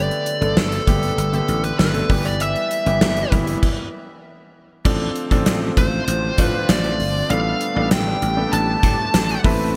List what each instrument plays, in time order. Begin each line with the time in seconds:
Already playing: grand piano D3 A3 B3 G4, lead electric guitar D5
0.11 closed hi-hat
0.26 closed hi-hat
0.41 slap bass G1, grand piano D3 A3 B3 A4, closed hi-hat
0.57 slap bass G1, lead electric guitar A4, snare
0.72 closed hi-hat
0.87 slap bass G1, grand piano D3 A3 B3 G4, kick, closed hi-hat
1.03 closed hi-hat
1.18 slap bass G1, lead electric guitar A4, closed hi-hat
1.33 grand piano D3 A3 B3 G4, closed hi-hat
1.48 slap bass A1, closed hi-hat
1.64 lead electric guitar B4, closed hi-hat
1.79 slap bass G1, lead electric guitar B4, snare
1.94 grand piano D3 A3 B3 A4, closed hi-hat
2.09 slap bass G1, grand piano E3 G3 B3 G4, kick, open hi-hat
2.25 lead electric guitar D5, closed hi-hat
2.40 lead electric guitar E5, closed hi-hat
2.56 closed hi-hat
2.71 closed hi-hat
2.86 slap bass G1, grand piano E3 G3 B3 G4, closed hi-hat
3.01 slap bass G1, snare
3.17 closed hi-hat
3.31 slap bass G1, grand piano E3 G3 B3 E4, kick, closed hi-hat
3.47 closed hi-hat
3.63 kick, crash
4.85 slap bass A1, analog synth pad D3 A3 C4 F4, grand piano F3 C4 D4 A4, kick, crash
5.16 closed hi-hat
5.30 slap bass A1, grand piano F3 C4 D4 A4, kick, closed hi-hat
5.46 slap bass A1, snare, closed hi-hat
5.77 slap bass A1, lead electric guitar C5, kick, closed hi-hat
6.08 slap bass A1, closed hi-hat
6.38 slap bass A2, grand piano F3 C4 D4 F4, lead electric guitar B4, kick, closed hi-hat
6.69 slap bass A1, lead electric guitar D5, snare, closed hi-hat
6.84 closed hi-hat
6.99 slap bass G1, open hi-hat
7.29 slap bass A1, grand piano G3 B3 D4 A4, analog synth pad D4 G4, lead electric guitar F5, closed hi-hat
7.61 closed hi-hat
7.76 slap bass A1, grand piano G3 B3 D4 A4
7.91 slap bass A1, lead electric guitar G5, snare, closed hi-hat
8.22 slap bass A1, closed hi-hat
8.37 grand piano G3 B3 D4 A4
8.53 slap bass A1, lead electric guitar A5, synth bell A6, closed hi-hat
8.83 slap bass A2, kick, closed hi-hat
9.14 slap bass A1, snare, closed hi-hat
9.29 closed hi-hat
9.44 slap bass A1, analog synth pad C3 E4, grand piano A3 C4 E4 B4, kick, open hi-hat